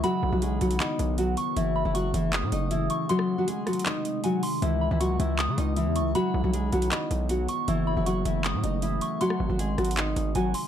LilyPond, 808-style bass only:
\new Staff \with { instrumentName = "808-style bass" } { \clef bass \time 4/4 \key fis \dorian \tempo 4 = 157 r8 b,,16 b,,8. b,,8 r8 b,,4 r8 | fis,,8. fis,,8. fis,,8. a,16 fis,,4 r8 | r1 | cis,8. cis,8. cis,8. cis16 cis,8. e,16. cis,16. |
r8 b,,16 b,,8. b,,8 r8 b,,4 r8 | fis,,8. fis,,8. fis,,8. a,16 fis,,4 r8 | r8 gis,,16 gis,,8. gis,,4 gis,,8 gis,,8 r8 | }